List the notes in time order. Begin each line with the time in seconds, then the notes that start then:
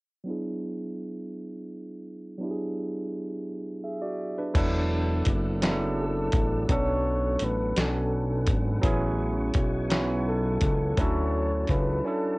0.24 F#3 B3 D4
0.29 E4 G#4
2.38 F#3 B3 D4
2.43 E4 G4
2.51 G#4
3.84 G#4 E5
4.02 F#4 D5
4.38 D4 B4
4.54 E1 F#3 B3 D4 E4 A4 D5 F#5 E6, kick, closed hi-hat, crash
5.25 F#1, kick, closed hi-hat
5.61 F#3 B3 D4 E4 G#4, snare, closed hi-hat
5.71 A4
6.00 A4
6.32 A1, kick, closed hi-hat
6.69 B1 F#3 B3 C#4 D4 A4 B4 C#5, kick, closed hi-hat
7.39 A1, closed hi-hat
7.44 B4
7.76 B1 F#3 B3 C#4 D4 A4 G#5, snare, closed hi-hat
8.46 G#1, kick, closed hi-hat
8.81 A1 F#3 B3 C#4 E4 G#4 G#5 C#6, kick, closed hi-hat
9.54 B1, kick, closed hi-hat
9.90 F#3 B3 C#4 E4 F#4, snare, closed hi-hat
10.28 A4
10.61 C#2, kick, closed hi-hat
10.96 D2 F#3 C#4 D4 E4 A4 C#5 F#5 A5, kick, closed hi-hat
11.01 A4
11.67 C#2 B4, kick, closed hi-hat
12.04 F#3 C#4 D4 E4 A4